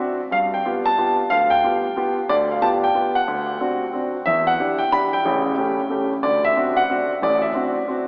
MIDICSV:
0, 0, Header, 1, 2, 480
1, 0, Start_track
1, 0, Tempo, 329128
1, 446, Time_signature, 3, 2, 24, 8
1, 11778, End_track
2, 0, Start_track
2, 0, Title_t, "Grand piano"
2, 0, Program_c, 0, 0
2, 0, Note_on_c, 0, 60, 49
2, 0, Note_on_c, 0, 62, 45
2, 0, Note_on_c, 0, 66, 60
2, 0, Note_on_c, 0, 76, 72
2, 210, Note_off_c, 0, 76, 0
2, 282, Note_off_c, 0, 60, 0
2, 285, Note_off_c, 0, 62, 0
2, 285, Note_off_c, 0, 66, 0
2, 456, Note_on_c, 0, 43, 61
2, 471, Note_on_c, 0, 77, 92
2, 544, Note_off_c, 0, 77, 0
2, 784, Note_on_c, 0, 79, 77
2, 865, Note_off_c, 0, 43, 0
2, 952, Note_on_c, 0, 59, 51
2, 952, Note_on_c, 0, 65, 47
2, 960, Note_on_c, 0, 67, 58
2, 1214, Note_off_c, 0, 79, 0
2, 1247, Note_on_c, 0, 81, 99
2, 1256, Note_off_c, 0, 65, 0
2, 1257, Note_off_c, 0, 59, 0
2, 1261, Note_off_c, 0, 67, 0
2, 1424, Note_on_c, 0, 59, 54
2, 1430, Note_on_c, 0, 65, 44
2, 1434, Note_on_c, 0, 67, 57
2, 1685, Note_off_c, 0, 81, 0
2, 1733, Note_off_c, 0, 59, 0
2, 1736, Note_off_c, 0, 65, 0
2, 1738, Note_off_c, 0, 67, 0
2, 1897, Note_on_c, 0, 77, 96
2, 1916, Note_on_c, 0, 38, 54
2, 2191, Note_on_c, 0, 79, 91
2, 2201, Note_off_c, 0, 77, 0
2, 2318, Note_off_c, 0, 38, 0
2, 2388, Note_on_c, 0, 59, 54
2, 2390, Note_on_c, 0, 65, 47
2, 2400, Note_on_c, 0, 67, 55
2, 2697, Note_off_c, 0, 59, 0
2, 2697, Note_off_c, 0, 65, 0
2, 2702, Note_off_c, 0, 67, 0
2, 2865, Note_on_c, 0, 59, 58
2, 2871, Note_on_c, 0, 65, 49
2, 2878, Note_on_c, 0, 67, 59
2, 3094, Note_off_c, 0, 79, 0
2, 3176, Note_off_c, 0, 59, 0
2, 3178, Note_off_c, 0, 65, 0
2, 3182, Note_off_c, 0, 67, 0
2, 3346, Note_on_c, 0, 74, 100
2, 3348, Note_on_c, 0, 38, 66
2, 3419, Note_off_c, 0, 74, 0
2, 3666, Note_on_c, 0, 77, 60
2, 3755, Note_off_c, 0, 38, 0
2, 3810, Note_on_c, 0, 59, 55
2, 3818, Note_on_c, 0, 65, 51
2, 3820, Note_on_c, 0, 67, 66
2, 3823, Note_on_c, 0, 81, 94
2, 3836, Note_off_c, 0, 77, 0
2, 3896, Note_off_c, 0, 81, 0
2, 4129, Note_off_c, 0, 59, 0
2, 4133, Note_off_c, 0, 65, 0
2, 4134, Note_off_c, 0, 67, 0
2, 4137, Note_on_c, 0, 79, 84
2, 4293, Note_on_c, 0, 59, 50
2, 4300, Note_on_c, 0, 65, 41
2, 4310, Note_on_c, 0, 67, 55
2, 4598, Note_on_c, 0, 78, 84
2, 4611, Note_off_c, 0, 59, 0
2, 4614, Note_off_c, 0, 65, 0
2, 4619, Note_off_c, 0, 67, 0
2, 4620, Note_off_c, 0, 79, 0
2, 4778, Note_on_c, 0, 38, 61
2, 5190, Note_off_c, 0, 38, 0
2, 5253, Note_on_c, 0, 60, 52
2, 5259, Note_on_c, 0, 62, 44
2, 5266, Note_on_c, 0, 66, 60
2, 5571, Note_off_c, 0, 60, 0
2, 5574, Note_off_c, 0, 62, 0
2, 5578, Note_off_c, 0, 66, 0
2, 5681, Note_off_c, 0, 78, 0
2, 5733, Note_on_c, 0, 60, 45
2, 5742, Note_on_c, 0, 62, 43
2, 5743, Note_on_c, 0, 66, 54
2, 6051, Note_off_c, 0, 60, 0
2, 6056, Note_off_c, 0, 62, 0
2, 6057, Note_off_c, 0, 66, 0
2, 6206, Note_on_c, 0, 76, 94
2, 6220, Note_on_c, 0, 40, 57
2, 6225, Note_on_c, 0, 52, 54
2, 6518, Note_on_c, 0, 78, 93
2, 6519, Note_off_c, 0, 76, 0
2, 6631, Note_off_c, 0, 40, 0
2, 6634, Note_off_c, 0, 52, 0
2, 6701, Note_on_c, 0, 64, 49
2, 6702, Note_on_c, 0, 62, 55
2, 6707, Note_on_c, 0, 67, 60
2, 6963, Note_off_c, 0, 78, 0
2, 6977, Note_on_c, 0, 79, 83
2, 7015, Note_off_c, 0, 64, 0
2, 7016, Note_off_c, 0, 62, 0
2, 7018, Note_off_c, 0, 67, 0
2, 7155, Note_off_c, 0, 79, 0
2, 7169, Note_on_c, 0, 62, 53
2, 7176, Note_on_c, 0, 64, 43
2, 7180, Note_on_c, 0, 67, 54
2, 7181, Note_on_c, 0, 83, 102
2, 7484, Note_on_c, 0, 79, 90
2, 7486, Note_off_c, 0, 83, 0
2, 7489, Note_off_c, 0, 62, 0
2, 7493, Note_off_c, 0, 64, 0
2, 7495, Note_off_c, 0, 67, 0
2, 7657, Note_on_c, 0, 49, 61
2, 7658, Note_on_c, 0, 33, 69
2, 8069, Note_off_c, 0, 49, 0
2, 8070, Note_off_c, 0, 33, 0
2, 8129, Note_on_c, 0, 57, 57
2, 8136, Note_on_c, 0, 61, 50
2, 8139, Note_on_c, 0, 67, 60
2, 8449, Note_off_c, 0, 57, 0
2, 8452, Note_off_c, 0, 61, 0
2, 8454, Note_off_c, 0, 67, 0
2, 8603, Note_on_c, 0, 57, 54
2, 8606, Note_on_c, 0, 61, 46
2, 8619, Note_on_c, 0, 67, 58
2, 8860, Note_off_c, 0, 79, 0
2, 8925, Note_off_c, 0, 57, 0
2, 8927, Note_off_c, 0, 61, 0
2, 8933, Note_off_c, 0, 67, 0
2, 9086, Note_on_c, 0, 74, 91
2, 9094, Note_on_c, 0, 38, 64
2, 9367, Note_off_c, 0, 74, 0
2, 9400, Note_on_c, 0, 76, 88
2, 9507, Note_off_c, 0, 38, 0
2, 9565, Note_on_c, 0, 60, 51
2, 9575, Note_on_c, 0, 62, 54
2, 9581, Note_on_c, 0, 66, 64
2, 9868, Note_on_c, 0, 78, 92
2, 9885, Note_off_c, 0, 60, 0
2, 9890, Note_off_c, 0, 62, 0
2, 9890, Note_off_c, 0, 76, 0
2, 9893, Note_off_c, 0, 66, 0
2, 10055, Note_on_c, 0, 60, 46
2, 10062, Note_on_c, 0, 62, 46
2, 10063, Note_on_c, 0, 66, 56
2, 10315, Note_off_c, 0, 78, 0
2, 10369, Note_off_c, 0, 60, 0
2, 10373, Note_off_c, 0, 62, 0
2, 10373, Note_off_c, 0, 66, 0
2, 10527, Note_on_c, 0, 45, 57
2, 10534, Note_on_c, 0, 33, 67
2, 10547, Note_on_c, 0, 74, 88
2, 10817, Note_on_c, 0, 76, 68
2, 10845, Note_off_c, 0, 74, 0
2, 10941, Note_off_c, 0, 45, 0
2, 10945, Note_off_c, 0, 33, 0
2, 11000, Note_on_c, 0, 60, 53
2, 11009, Note_on_c, 0, 62, 51
2, 11015, Note_on_c, 0, 66, 57
2, 11321, Note_off_c, 0, 60, 0
2, 11325, Note_off_c, 0, 62, 0
2, 11328, Note_off_c, 0, 66, 0
2, 11488, Note_on_c, 0, 60, 54
2, 11500, Note_on_c, 0, 62, 40
2, 11505, Note_on_c, 0, 66, 55
2, 11722, Note_off_c, 0, 76, 0
2, 11778, Note_off_c, 0, 60, 0
2, 11778, Note_off_c, 0, 62, 0
2, 11778, Note_off_c, 0, 66, 0
2, 11778, End_track
0, 0, End_of_file